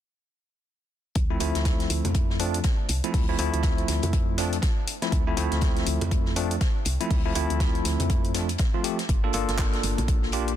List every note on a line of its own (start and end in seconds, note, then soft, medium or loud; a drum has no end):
1.15 1.36 D2 medium
1.15 kick loud
1.15 closed hi-hat medium
1.30 1.38 F3 medium
1.30 1.38 A3 medium
1.30 1.38 C4 medium
1.30 1.38 E4 medium
1.40 1.52 D2 medium
1.40 2.37 F3 medium
1.40 2.37 A3 medium
1.40 2.37 C4 medium
1.40 2.37 E4 medium
1.40 closed hi-hat medium
1.40 open hi-hat loud
1.55 1.87 D2 medium
1.55 snare medium
1.55 closed hi-hat medium
1.65 kick loud
1.65 snare loud
1.65 closed hi-hat medium
1.80 snare medium
1.80 closed hi-hat soft
1.90 2.02 D2 medium
1.90 closed hi-hat medium
1.90 open hi-hat loud
2.05 2.61 F2 loud
2.05 closed hi-hat medium
2.05 high conga medium
2.15 kick loud
2.15 closed hi-hat medium
2.30 snare soft
2.40 2.58 F3 medium
2.40 2.58 A3 medium
2.40 2.58 C4 medium
2.40 2.58 D4 loud
2.40 closed hi-hat medium
2.40 open hi-hat loud
2.54 closed hi-hat medium
2.64 kick loud
2.64 snare loud
2.64 closed hi-hat medium
2.89 3.01 C2 medium
2.89 closed hi-hat medium
2.89 open hi-hat loud
3.04 3.25 F3 medium
3.04 3.25 A3 medium
3.04 3.25 C4 medium
3.04 3.25 E4 medium
3.04 closed hi-hat medium
3.14 3.35 D2 loud
3.14 kick loud
3.14 closed hi-hat medium
3.14 open hi-hat medium
3.29 3.36 F3 medium
3.29 3.36 A3 medium
3.29 3.36 C4 medium
3.29 3.36 E4 loud
3.39 3.51 D2 medium
3.39 4.36 F3 medium
3.39 4.36 A3 medium
3.39 4.36 C4 medium
3.39 4.36 E4 medium
3.39 closed hi-hat medium
3.39 open hi-hat loud
3.54 3.85 D2 medium
3.54 closed hi-hat medium
3.63 kick loud
3.63 snare loud
3.63 closed hi-hat medium
3.78 closed hi-hat soft
3.88 4.00 D2 medium
3.88 snare soft
3.88 closed hi-hat medium
3.88 open hi-hat loud
4.03 4.59 F2 loud
4.03 closed hi-hat soft
4.03 high conga medium
4.13 kick loud
4.13 closed hi-hat medium
4.38 4.57 F3 medium
4.38 4.57 A3 medium
4.38 4.57 C4 medium
4.38 4.57 D4 loud
4.38 snare soft
4.38 closed hi-hat medium
4.38 open hi-hat loud
4.53 closed hi-hat soft
4.62 kick loud
4.62 snare loud
4.62 closed hi-hat medium
4.88 closed hi-hat medium
4.88 open hi-hat loud
5.02 5.24 F3 medium
5.02 5.24 A3 medium
5.02 5.24 C4 medium
5.02 5.24 E4 medium
5.02 snare medium
5.02 closed hi-hat medium
5.12 5.33 D2 loud
5.12 kick loud
5.12 closed hi-hat medium
5.27 5.35 F3 medium
5.27 5.35 A3 medium
5.27 5.35 C4 medium
5.27 5.35 E4 loud
5.37 5.49 D2 medium
5.37 6.34 F3 medium
5.37 6.34 A3 medium
5.37 6.34 C4 medium
5.37 6.34 E4 loud
5.37 closed hi-hat medium
5.37 open hi-hat loud
5.51 5.83 D2 medium
5.51 snare soft
5.51 closed hi-hat soft
5.61 kick loud
5.61 snare loud
5.61 closed hi-hat medium
5.77 snare medium
5.77 closed hi-hat soft
5.87 5.98 D2 medium
5.87 closed hi-hat medium
5.87 open hi-hat loud
6.01 6.58 F2 loud
6.01 closed hi-hat soft
6.01 high conga medium
6.11 kick loud
6.11 closed hi-hat medium
6.26 snare soft
6.36 6.55 F3 medium
6.36 6.55 A3 medium
6.36 6.55 C4 medium
6.36 6.55 D4 loud
6.36 closed hi-hat medium
6.36 open hi-hat loud
6.51 closed hi-hat soft
6.61 kick loud
6.61 snare loud
6.61 closed hi-hat medium
6.85 6.98 C2 medium
6.85 closed hi-hat medium
6.85 open hi-hat loud
7.00 7.22 F3 medium
7.00 7.22 A3 medium
7.00 7.22 C4 medium
7.00 7.22 E4 loud
7.00 closed hi-hat soft
7.10 7.31 D2 medium
7.10 kick loud
7.10 closed hi-hat medium
7.10 open hi-hat medium
7.25 7.33 F3 medium
7.25 7.33 A3 medium
7.25 7.33 C4 medium
7.25 7.33 E4 loud
7.35 7.47 D2 medium
7.35 8.32 F3 medium
7.35 8.32 A3 medium
7.35 8.32 C4 medium
7.35 8.32 E4 medium
7.35 closed hi-hat medium
7.35 open hi-hat loud
7.50 7.82 D2 medium
7.50 closed hi-hat soft
7.60 kick loud
7.60 snare loud
7.60 closed hi-hat medium
7.75 closed hi-hat soft
7.85 7.97 D2 medium
7.85 snare soft
7.85 closed hi-hat medium
7.85 open hi-hat loud
8.00 8.56 F2 loud
8.00 closed hi-hat soft
8.00 high conga medium
8.10 kick loud
8.10 closed hi-hat medium
8.25 closed hi-hat soft
8.34 8.47 F3 medium
8.34 8.48 A3 medium
8.34 8.48 C4 medium
8.34 8.48 D4 medium
8.34 snare soft
8.34 closed hi-hat medium
8.34 open hi-hat loud
8.49 closed hi-hat soft
8.58 kick loud
8.58 snare loud
8.58 closed hi-hat medium
8.74 8.83 F3 medium
8.74 8.83 A3 medium
8.74 8.83 C4 medium
8.74 8.83 F4 medium
8.84 8.97 F3 medium
8.84 8.97 A3 medium
8.84 8.97 C4 medium
8.84 8.97 G4 medium
8.84 closed hi-hat medium
8.84 open hi-hat loud
8.99 snare medium
8.99 closed hi-hat soft
9.09 9.30 G1 loud
9.09 kick loud
9.09 closed hi-hat medium
9.24 9.31 A#3 medium
9.24 9.31 D4 medium
9.24 9.31 F4 medium
9.24 9.31 A4 medium
9.33 9.46 G1 medium
9.33 10.31 A#3 medium
9.33 10.31 D4 medium
9.33 10.31 F4 medium
9.33 10.31 A4 medium
9.33 closed hi-hat medium
9.33 open hi-hat loud
9.49 9.80 G1 medium
9.49 snare soft
9.49 closed hi-hat soft
9.58 kick loud
9.58 snare loud
9.58 clap loud
9.58 closed hi-hat medium
9.73 snare medium
9.73 closed hi-hat soft
9.83 9.95 G1 medium
9.83 closed hi-hat medium
9.83 open hi-hat loud
9.98 10.55 A#1 loud
9.98 closed hi-hat soft
9.98 high conga medium
10.08 kick loud
10.08 closed hi-hat medium
10.23 snare soft
10.32 10.52 A#3 medium
10.32 10.52 D4 medium
10.32 10.52 F4 medium
10.32 10.52 G4 loud
10.32 closed hi-hat medium
10.32 open hi-hat loud
10.48 closed hi-hat soft